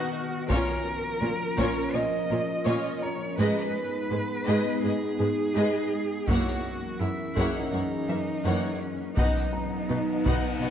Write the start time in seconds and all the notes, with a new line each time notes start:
Already playing: D#3 B3 D#4 F#4 B4 D#5 F#5 F6
0.49 A#2 F3 C#4 F4 A#4 C#5, taiko
1.21 A#2 C#4 F4 A#4
1.58 A#2 C#4 F4 C#5, taiko
1.93 A#2 C#4 F4 C#5 D#5
2.30 A#2 C#4 F4 A#4
2.65 A#2 C#4 F4 C#5
3.02 C#5 A#5
3.38 G#2 G#3 B3 D#4 G#4 B4 D#5
4.10 G#2 G#3 G#4 B4
4.47 G#2 G#3 G#4 B4 D#5
4.83 G#2 G#3 G#4 B4 D#5
5.19 G#2 G#3 G#4 B4
5.55 G#2 G#3 G#4 B4 D#5
6.28 F#2 E3 F#3 A#3 C#4 E4 F#4 A#4 C#5 F#5, taiko
7.00 F#2 A#3 E4 A#4 E5
7.36 F#2 A#3 E4 G#4 C#5 F#5, taiko
7.55 D#4
7.72 F#2 E3 A#3 D#4 C#5 F#5
8.08 F#2 E3 A#3 A#4 E5
8.45 F#2 E3 A#3 C#5 F#5
8.81 C#4
9.16 B2 B3 D#4 B4 D#5 F#5, taiko, reverse cymbal
9.53 A#5
9.89 B2 B3 D#4 B4 D#5
10.25 B2 B3 D#4 D#5 F#5, taiko
10.61 B2 B3 D#4 D#5 F#5